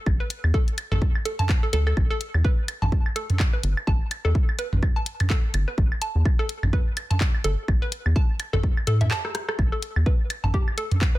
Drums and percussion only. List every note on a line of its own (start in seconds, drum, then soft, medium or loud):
0.06 kick loud
0.06 claves soft
0.30 closed hi-hat loud
0.44 claves soft
0.54 kick loud
0.68 closed hi-hat soft
0.78 closed hi-hat medium
0.78 claves soft
0.92 mid tom medium
1.02 kick loud
1.15 claves soft
1.25 closed hi-hat medium
1.39 closed hi-hat soft
1.39 mid tom medium
1.49 kick loud
1.49 clap loud
1.49 claves soft
1.73 closed hi-hat loud
1.87 claves soft
1.97 kick loud
1.97 claves soft
2.21 closed hi-hat medium
2.34 claves soft
2.45 kick loud
2.68 closed hi-hat medium
2.68 claves soft
2.82 mid tom medium
2.92 kick loud
3.06 claves soft
3.16 closed hi-hat medium
3.30 closed hi-hat soft
3.30 mid tom medium
3.40 kick loud
3.40 clap loud
3.40 claves soft
3.63 closed hi-hat medium
3.77 claves soft
3.87 kick loud
4.11 closed hi-hat medium
4.11 claves soft
4.35 kick loud
4.49 claves soft
4.59 closed hi-hat medium
4.73 mid tom medium
4.83 kick loud
4.83 claves soft
5.06 closed hi-hat medium
5.20 closed hi-hat soft
5.20 mid tom medium
5.20 claves soft
5.30 kick loud
5.30 clap loud
5.54 closed hi-hat medium
5.54 claves soft
5.78 kick loud
5.92 claves soft
6.02 closed hi-hat medium
6.25 kick loud
6.25 claves soft
6.49 closed hi-hat medium
6.63 mid tom medium
6.63 claves soft
6.73 kick loud
6.97 closed hi-hat medium
6.97 claves soft
7.11 closed hi-hat soft
7.11 mid tom medium
7.21 kick loud
7.21 clap loud
7.35 claves soft
7.44 closed hi-hat medium
7.68 kick loud
7.68 claves soft
7.92 closed hi-hat medium
8.06 claves soft
8.16 kick loud
8.40 closed hi-hat medium
8.40 claves soft
8.53 mid tom medium
8.63 kick loud
8.77 claves soft
8.87 closed hi-hat medium
9.01 closed hi-hat soft
9.01 mid tom medium
9.11 cross-stick medium
9.11 clap loud
9.11 claves soft
9.25 cross-stick medium
9.35 cross-stick medium
9.35 closed hi-hat medium
9.49 cross-stick medium
9.49 claves soft
9.59 kick loud
9.59 claves soft
9.82 closed hi-hat medium
9.96 claves soft
10.06 kick loud
10.30 closed hi-hat medium
10.30 claves soft
10.44 mid tom medium
10.54 kick loud
10.68 claves soft
10.78 closed hi-hat medium
10.91 closed hi-hat soft
10.91 mid tom medium
11.01 kick loud
11.01 clap loud
11.01 claves soft